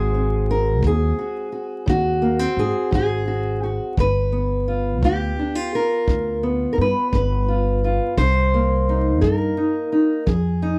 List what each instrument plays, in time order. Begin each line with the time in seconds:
Already playing: upright bass G#1, steel-string acoustic guitar G#2 G#3 C4 F#4 G#4
0.14 steel-string acoustic guitar C4
0.51 steel-string acoustic guitar A#4
0.82 upright bass D#2, steel-string acoustic guitar G#2, kick
0.87 steel-string acoustic guitar G#4
1.19 steel-string acoustic guitar F#4
1.52 steel-string acoustic guitar F#4
1.86 upright bass D#2, steel-string acoustic guitar G#2 F#4, kick
2.22 steel-string acoustic guitar A#3
2.39 steel-string acoustic guitar C4
2.57 upright bass G#2, steel-string acoustic guitar G#4
2.91 upright bass G#1, steel-string acoustic guitar G#2 G#4, kick
3.28 steel-string acoustic guitar F#4
3.63 steel-string acoustic guitar F#4
3.97 upright bass G1, steel-string acoustic guitar G2 B4, kick
4.32 steel-string acoustic guitar B3
4.68 steel-string acoustic guitar F4
5.02 upright bass D2, steel-string acoustic guitar G2 G4, kick
5.39 steel-string acoustic guitar D4
5.55 steel-string acoustic guitar F4
5.75 steel-string acoustic guitar A#4
6.08 upright bass D2, steel-string acoustic guitar G2, kick
6.43 steel-string acoustic guitar B3
6.73 steel-string acoustic guitar A#4
6.78 upright bass G2, steel-string acoustic guitar B4
7.12 upright bass G1, steel-string acoustic guitar G2 B4, kick
7.48 steel-string acoustic guitar F4
7.84 steel-string acoustic guitar F4
8.18 upright bass C2, steel-string acoustic guitar C3 C5, kick
8.54 steel-string acoustic guitar A#3
8.89 steel-string acoustic guitar D#4
9.21 upright bass G2, steel-string acoustic guitar C3 A#4, kick
9.57 steel-string acoustic guitar D#4
9.92 steel-string acoustic guitar D#4
10.26 upright bass F2, steel-string acoustic guitar F3 G#4, kick
10.62 steel-string acoustic guitar D#4